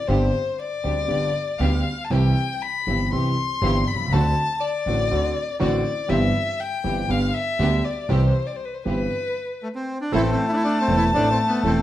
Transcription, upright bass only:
0.09 0.30 G1 medium
0.84 1.05 D2 medium
1.09 1.30 G1 medium
1.59 1.81 D2 medium
2.10 2.32 C2 medium
2.87 3.08 G1 medium
3.12 3.33 C2 medium
3.62 3.83 G1 medium
3.93 3.98 B1 soft
3.99 4.05 C2 medium
4.05 4.11 C#2 medium
4.11 4.32 D2 medium
4.86 5.07 A1 medium
5.11 5.32 D2 medium
5.61 5.81 A1 medium
6.10 6.30 G1 medium
6.84 7.05 G1 medium
7.09 7.30 G1 medium
7.59 7.80 D2 loud
8.09 8.30 C2 medium
8.86 9.06 G1 medium
10.12 10.33 A1 medium
10.88 11.09 E1 medium
11.13 11.34 A1 medium
11.63 11.82 E1 medium

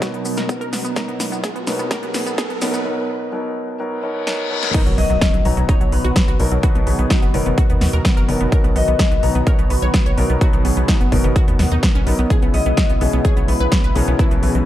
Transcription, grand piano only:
0.00 0.94 B2 medium
0.00 0.94 F#3 medium
0.00 0.94 B3 medium
0.00 0.94 D#4 medium
0.00 0.94 A#4 loud
0.96 1.64 B2 medium
0.96 1.64 F#3 medium
0.96 1.64 B3 medium
0.96 1.64 D#4 medium
0.96 1.64 A#4 medium
1.67 1.89 B2 medium
1.67 1.89 F#3 medium
1.67 1.89 B3 medium
1.67 1.89 D#4 medium
1.67 1.89 A#4 medium
1.91 2.59 B2 medium
1.91 2.59 F#3 medium
1.91 2.59 B3 medium
1.91 2.59 D#4 medium
1.91 2.59 A#4 medium
2.62 2.84 B2 medium
2.62 2.83 F#3 medium
2.62 2.83 B3 medium
2.62 2.83 D#4 medium
2.62 2.83 A#4 medium
2.85 3.31 B2 medium
2.85 3.31 F#3 medium
2.85 3.31 B3 medium
2.85 3.31 D#4 medium
2.85 3.31 A#4 medium
3.32 3.78 B2 medium
3.32 3.78 F#3 medium
3.32 3.78 B3 medium
3.32 3.78 D#4 medium
3.32 3.78 A#4 medium
3.80 4.02 B2 medium
3.80 4.02 F#3 medium
3.80 4.02 B3 medium
3.80 4.02 D#4 medium
3.80 4.02 A#4 medium
4.03 4.25 B2 medium
4.03 4.25 F#3 medium
4.03 4.25 B3 medium
4.03 4.25 D#4 medium
4.03 4.25 A#4 medium
4.27 4.49 B2 medium
4.27 4.49 F#3 medium
4.27 4.49 B3 medium
4.27 4.49 D#4 medium
4.27 4.49 A#4 medium
4.51 4.72 B2 medium
4.51 4.72 F#3 medium
4.51 4.72 B3 medium
4.51 4.72 D#4 medium
4.51 4.72 A#4 medium
4.74 5.42 B2 medium
4.74 5.42 F#3 medium
4.74 5.42 B3 medium
4.74 5.42 D#4 medium
4.74 5.42 A#4 medium
5.45 6.37 B2 medium
5.45 6.37 F#3 medium
5.45 6.37 B3 medium
5.45 6.37 D#4 medium
5.45 6.37 A#5 medium
6.40 6.60 B2 medium
6.40 6.60 F#3 medium
6.40 6.61 B3 medium
6.40 6.60 D#4 medium
6.40 6.61 A#4 loud
6.63 7.31 B2 loud
6.63 7.31 F#3 medium
6.63 7.31 B3 medium
6.63 7.31 D#4 medium
6.63 7.31 B4 loud
7.34 8.26 B2 medium
7.34 8.26 F#3 medium
7.34 8.26 B3 medium
7.34 8.26 D#4 medium
7.34 8.26 A#4 loud
8.29 8.49 B2 medium
8.29 8.49 F#3 medium
8.29 8.49 B3 medium
8.29 8.49 D#4 medium
8.29 8.49 A#4 medium
8.52 9.20 B2 medium
8.52 9.20 F#3 medium
8.52 9.20 B3 medium
9.23 10.15 B2 medium
9.23 10.15 F#3 medium
9.23 10.15 B3 medium
9.23 10.15 D#4 medium
9.23 10.15 A#5 medium
10.18 10.38 B2 medium
10.18 10.38 F#3 medium
10.18 10.38 B3 medium
10.18 10.38 D#4 medium
10.18 10.38 A#4 loud
10.41 11.09 B2 loud
10.41 11.09 F#3 medium
10.41 11.09 B3 medium
10.41 11.09 D#4 medium
10.41 11.09 B4 loud
11.12 12.04 B2 medium
11.12 12.04 F#3 medium
11.12 12.04 B3 medium
11.12 12.04 D#4 medium
11.12 12.04 A#4 loud
12.07 12.27 F#3 medium
12.07 12.27 B3 medium
12.07 12.27 D#4 medium
12.07 12.27 A#4 medium
12.30 12.98 B2 medium
12.30 12.98 E3 medium
12.30 12.98 B3 medium
12.30 12.98 C#4 medium
12.30 12.98 G#4 medium
13.01 13.93 B2 medium
13.01 13.93 E3 medium
13.01 13.93 B3 medium
13.01 13.93 C#4 medium
13.01 13.93 G#4 medium
13.96 14.16 B2 medium
13.96 14.16 E3 medium
13.96 14.16 B3 medium
13.96 14.16 C#4 medium
13.96 14.16 G#4 loud
14.19 14.65 B2 loud
14.19 14.65 E3 medium
14.19 14.65 B3 medium
14.19 14.65 C#4 medium
14.19 14.65 B4 loud

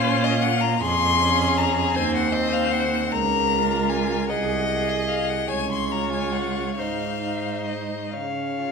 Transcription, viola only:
0.00 0.81 C#4 medium
1.20 1.94 C#4 medium
1.96 2.33 C4 medium
2.34 3.11 C4 medium
3.52 4.29 F4 medium
4.31 4.69 G#4 medium
4.70 5.48 G#4 medium
5.91 6.76 F4 soft
6.78 7.21 D#4 soft
7.23 8.12 D#4 soft
8.61 8.72 F4 soft

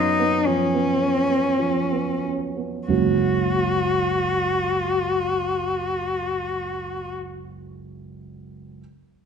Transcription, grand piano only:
0.00 2.85 F#2 soft
0.00 0.19 B3 soft
0.00 0.35 C#4 soft
0.19 0.62 B3 soft
0.47 0.90 F3 soft
0.74 1.19 B3 soft
1.02 1.49 C#4 soft
1.30 1.79 B3 soft
1.59 2.11 F3 soft
1.92 2.45 B3 soft
2.24 2.76 C#4 soft
2.57 2.89 B3 soft
2.88 7.09 F#1 soft
2.88 7.10 C#2 soft
2.88 7.09 F#3 soft
2.88 7.10 A#3 soft
2.88 7.10 C#4 soft
2.88 7.10 F#4 soft

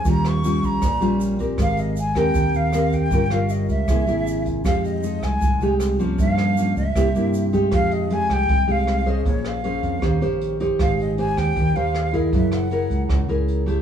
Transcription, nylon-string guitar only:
0.05 0.80 D#3 soft
0.05 0.40 G3 medium
0.05 0.40 C#4 soft
0.05 0.41 F4 medium
0.44 0.82 G3 medium
0.44 0.82 C#4 medium
0.44 0.82 F4 medium
0.83 1.57 A#2 medium
1.00 1.36 G3 medium
1.00 1.36 C#4 medium
1.00 1.36 F4 medium
1.40 1.94 C4 medium
1.40 1.94 G4 medium
1.40 1.94 A#4 medium
1.58 2.33 G#3 soft
2.16 2.70 C4 medium
2.16 2.70 G4 medium
2.16 2.71 A#4 medium
2.35 3.10 D#3 soft
2.73 3.09 C4 medium
2.73 3.09 G4 soft
2.73 3.09 A#4 medium
3.12 3.87 G3 soft
3.12 3.23 C#4 soft
3.12 3.24 F4 medium
3.12 3.24 A#4 medium
3.32 3.86 C#4 medium
3.32 3.86 F4 medium
3.32 3.86 A#4 medium
3.89 4.64 C3 soft
3.89 4.05 A#3 medium
3.89 4.05 E4 medium
3.89 4.05 G#4 medium
4.07 4.62 A#3 medium
4.07 4.62 E4 medium
4.07 4.62 G#4 medium
4.65 5.40 F3 soft
4.65 5.00 G#3 soft
4.65 5.00 D#4 soft
4.65 5.01 G4 medium
5.03 5.58 G#3 medium
5.03 5.58 D#4 medium
5.43 6.17 C3 medium
5.62 5.97 G#3 medium
5.62 5.97 D#4 medium
5.62 5.97 G4 medium
5.99 6.54 F3 medium
5.99 6.54 A#3 medium
5.99 6.54 C#4 medium
6.18 6.93 G2 soft
6.57 6.83 F3 soft
6.57 6.83 A#3 medium
6.57 6.83 C#4 medium
6.95 7.70 C3 soft
6.95 7.07 A#3 medium
6.95 7.07 E4 medium
6.95 7.07 G4 medium
7.16 7.50 A#3 medium
7.16 7.51 E4 medium
7.16 7.51 G4 medium
7.53 8.07 G#3 medium
7.53 8.07 D#4 medium
7.53 8.08 G4 medium
7.72 8.47 F3 medium
8.10 8.49 G#3 medium
8.10 8.49 D#4 medium
8.10 8.49 G4 medium
8.50 9.24 C3 medium
8.67 9.03 G#3 medium
8.67 9.03 D#4 medium
8.67 9.03 G4 medium
9.06 9.61 C#4 medium
9.06 9.61 G#4 medium
9.06 9.61 C5 medium
9.25 10.00 A#3 soft
9.64 10.01 C#4 medium
9.64 10.01 G#4 soft
9.64 10.01 C5 medium
10.01 10.77 D#3 medium
10.01 10.18 C#4 medium
10.01 10.18 G4 medium
10.01 10.18 C5 medium
10.21 10.57 C#4 medium
10.21 10.57 G4 medium
10.21 10.57 C5 medium
10.60 11.15 D#4 medium
10.60 11.15 G4 medium
10.60 11.15 C5 medium
10.79 11.54 G#3 medium
11.18 11.72 D#4 medium
11.18 11.72 G4 medium
11.18 11.73 C5 medium
11.57 12.31 D#3 medium
11.76 12.11 D#4 medium
11.76 12.11 G4 medium
11.76 12.11 C5 medium
12.13 12.68 E4 medium
12.13 12.68 G#4 medium
12.13 12.68 A#4 medium
12.33 13.08 F#3 soft
12.71 13.26 E4 soft
12.71 13.26 G#4 medium
12.71 13.26 A#4 medium
13.09 13.82 C#3 soft
13.28 13.64 E4 medium
13.28 13.64 G#4 medium
13.28 13.64 A#4 medium
13.66 13.82 A3 medium
13.66 13.82 E4 medium
13.66 13.82 G4 medium

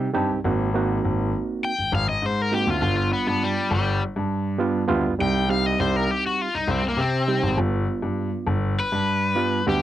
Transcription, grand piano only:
0.15 0.28 G2 medium
0.30 0.37 C2 soft
0.44 0.96 G#1 medium
1.05 1.30 G#1 medium
1.79 1.86 G#1 soft
1.92 2.06 G#1 loud
2.07 2.15 G#1 soft
2.22 2.61 G#2 medium
2.67 2.80 D2 medium
2.82 3.07 G1 medium
3.27 3.53 G2 medium
3.71 3.97 G1 loud
4.16 4.80 G2 medium
4.89 5.03 D2 medium
5.06 5.13 G1 soft
5.21 5.72 C2 medium
5.79 6.05 C2 medium
6.54 6.62 C2 soft
6.67 6.81 C2 loud
6.83 6.90 C2 soft
6.97 7.36 C3 medium
7.43 7.55 G#1 medium
7.57 7.83 G1 loud
8.02 8.28 G2 medium
8.47 8.72 G1 loud
8.92 9.56 G2 medium
9.67 9.80 D2 medium

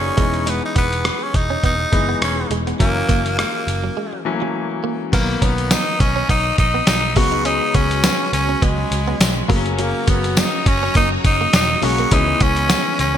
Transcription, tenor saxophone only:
0.00 0.50 C#4 medium
0.49 0.64 B3 medium
0.65 0.76 D#4 medium
0.78 1.24 B3 medium
1.23 1.38 C#4 medium
1.36 1.64 D#4 medium
1.65 2.19 D#4 loud
2.24 2.50 C#4 medium
2.80 3.34 A#3 loud
3.39 4.22 A#3 medium
5.14 5.45 A#3 medium
5.43 5.74 B3 medium
5.72 6.02 D#4 medium
6.00 6.29 C#4 medium
6.30 6.57 D#4 loud
6.59 6.86 D#4 medium
6.88 7.18 D#4 loud
7.17 7.47 F#4 loud
7.46 7.76 D#4 loud
7.75 8.33 C#4 loud
8.34 8.64 C#4 medium
8.63 9.50 G#3 medium
9.80 10.11 A#3 medium
10.09 10.41 B3 medium
10.39 10.69 D#4 medium
10.68 10.96 C#4 medium
10.97 11.09 D#4 loud
11.26 11.52 D#4 loud
11.55 11.85 D#4 loud
11.84 12.15 F#4 loud
12.13 12.45 D#4 loud
12.43 13.00 C#4 loud
13.00 13.18 C#4 medium

